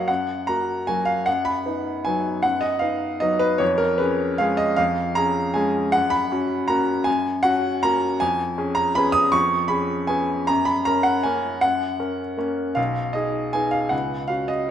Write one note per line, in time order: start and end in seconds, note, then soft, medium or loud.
0.00 0.09 F#2 medium
0.00 0.10 F#3 soft
0.00 0.11 A#3 soft
0.00 0.11 F#4 soft
0.00 0.11 C#5 medium
0.00 0.11 D#5 medium
0.00 0.11 F5 medium
0.00 0.08 F#5 medium
0.08 0.46 F#2 medium
0.08 0.46 F#5 medium
0.47 0.85 A#3 soft
0.47 0.85 F#4 soft
0.47 0.88 A#5 medium
0.87 1.23 F#3 soft
0.87 1.23 A#3 soft
0.87 1.24 F#4 soft
0.87 1.08 G#5 medium
1.05 1.26 F5 medium
1.26 1.64 F#2 medium
1.26 1.45 F#5 medium
1.45 2.05 B5 medium
1.66 2.02 B3 soft
1.66 2.02 D#4 soft
2.05 2.41 F#3 soft
2.05 2.41 B3 soft
2.05 2.41 D#4 soft
2.05 2.44 G#5 medium
2.43 2.81 F#2 medium
2.43 2.62 F#5 medium
2.61 2.81 D#5 medium
2.79 3.17 B3 soft
2.79 3.18 D#4 soft
2.79 3.20 F5 medium
3.20 3.57 F#3 soft
3.20 3.57 B3 soft
3.20 3.57 D#4 soft
3.20 3.41 D#5 medium
3.39 3.60 B4 medium
3.58 3.98 F2 medium
3.58 3.79 C#5 medium
3.78 3.98 A#4 medium
3.98 4.36 C#4 soft
3.98 4.36 G#4 soft
3.98 4.38 B4 medium
4.38 4.74 G#3 soft
4.38 4.75 C#4 soft
4.38 4.75 G#4 medium
4.38 4.58 F5 loud
4.57 4.77 D#5 medium
4.76 5.15 F2 medium
4.76 5.15 F5 loud
5.15 5.52 C#4 soft
5.15 5.52 G#4 soft
5.15 5.55 A#5 loud
5.54 5.90 G#3 soft
5.54 5.90 C#4 soft
5.54 5.90 G#4 medium
5.54 5.93 G#5 medium
5.92 6.30 F#2 medium
5.92 6.11 F#5 loud
6.10 6.69 B5 loud
6.32 6.66 C#4 medium
6.32 6.66 F#4 medium
6.68 7.03 A#3 soft
6.68 7.03 C#4 soft
6.68 7.03 F#4 medium
6.68 7.06 A#5 medium
7.04 7.43 F#2 medium
7.04 7.43 G#5 loud
7.43 7.79 C#4 medium
7.43 7.80 F#4 medium
7.43 7.83 F#5 loud
7.83 8.18 A#3 soft
7.83 8.18 C#4 medium
7.83 8.18 F#4 medium
7.83 8.21 A#5 loud
8.20 8.57 F2 medium
8.20 8.77 G#5 loud
8.58 8.93 C#4 medium
8.58 8.93 G#4 medium
8.75 8.95 A#5 loud
8.95 9.31 B3 medium
8.95 9.31 C#4 soft
8.95 9.31 G#4 medium
8.95 9.15 B5 loud
9.12 9.33 D#6 loud
9.32 9.70 F2 medium
9.32 9.70 C#6 loud
9.68 10.06 C#4 soft
9.68 10.06 G#4 soft
9.68 10.09 B5 loud
10.07 10.45 B3 soft
10.07 10.45 C#4 soft
10.07 10.45 G#4 soft
10.07 10.48 G#5 medium
10.47 10.85 F#2 medium
10.47 10.67 A#5 loud
10.65 10.86 B5 loud
10.85 11.22 C#4 soft
10.85 11.22 A#4 medium
10.85 11.05 A#5 loud
11.03 11.24 F#5 medium
11.23 11.59 A#3 soft
11.23 11.60 C#4 soft
11.23 11.60 A#4 medium
11.23 11.62 G#5 medium
11.61 11.99 F#2 medium
11.61 12.18 F#5 loud
12.00 12.35 C#4 soft
12.00 12.35 A#4 soft
12.37 12.73 A#3 soft
12.37 12.73 C#4 soft
12.37 12.73 A#4 soft
12.75 13.14 B1 medium
12.75 13.14 F5 medium
13.13 13.50 D#4 soft
13.13 13.50 G#4 soft
13.13 13.53 D#5 medium
13.53 13.89 B3 soft
13.53 13.89 D#4 soft
13.53 13.89 G#4 soft
13.53 13.73 G#5 medium
13.71 13.91 F5 medium
13.89 14.29 C#2 medium
13.89 14.29 F#5 medium
14.28 14.67 C#4 soft
14.28 14.67 F#4 soft
14.28 14.49 F5 medium
14.48 14.70 D#5 medium